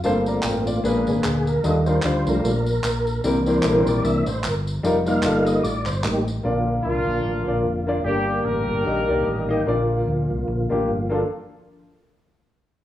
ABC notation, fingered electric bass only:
X:1
M:4/4
L:1/8
Q:"Swing" 1/4=150
K:Bb
V:1 name="Fingered electric bass" clef=bass
G,,,2 A,,,2 B,,, _A,,, D,,2 | E,,2 D,, C,, B,,,2 B,,,2 | C,,2 B,,, B,,, C,, A,,, G,,,2 | F,,,2 G,,,2 A,,, G,,, A,,,2 |
B,,,2 C,, B,,, A,,, B,,, F,,,2 | G,,,2 A,,, G,,, B,,, C,, A,,,2 | B,,,2 D,, C,, B,,, A,,, G,,,2 | z8 |]